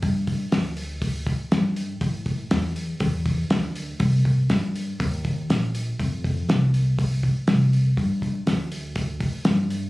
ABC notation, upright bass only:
X:1
M:4/4
L:1/8
Q:1/4=121
K:Flyd
V:1 name="Upright bass" clef=bass
G,,2 D,,4 G,,2 | A,,2 E,,2 E,,2 D,,2 | C,,2 G,,2 _E,,2 _B,,,2 | F,,2 C,,4 C,,2 |
G,,2 D,,4 G,,2 |]